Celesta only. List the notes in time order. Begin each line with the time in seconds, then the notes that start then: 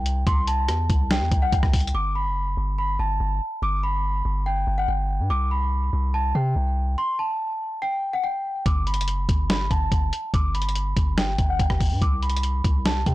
Already playing: G5
0.27 C6
0.48 A5
1.11 G5
1.42 F#5
1.95 D6
2.15 B5
2.78 B5
2.99 A5
3.63 D6
3.83 B5
4.46 G5
4.78 F#5
4.88 G5
5.30 D6
5.51 B5
6.14 A5
6.35 G5
6.98 C6
7.19 A5
7.82 G5
8.13 F#5
8.24 G5
8.66 D6
8.87 B5
9.50 B5
9.71 A5
10.34 D6
10.54 B5
11.17 G5
11.49 F#5
12.02 D6
12.23 B5
12.86 A5
13.06 G5